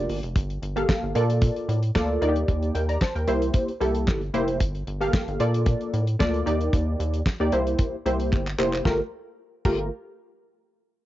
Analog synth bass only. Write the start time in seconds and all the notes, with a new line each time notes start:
0.09 G1
0.23 F1
0.36 G1
0.62 G1
1.03 G1
1.15 A#2
1.69 A2
1.95 D2
2.22 D#2
2.48 D#2
2.75 D#2
3.15 D#2
3.28 C2
3.81 C2
4.08 G1
4.34 F1
4.60 G1
4.87 G1
5.28 G1
5.40 A#2
5.93 A2
6.20 D2
6.46 D#2
6.73 D#2
7.00 D#2
7.40 D#2
7.53 C2
8.06 C2
8.33 G1
8.59 F1
8.85 G1
9.65 G1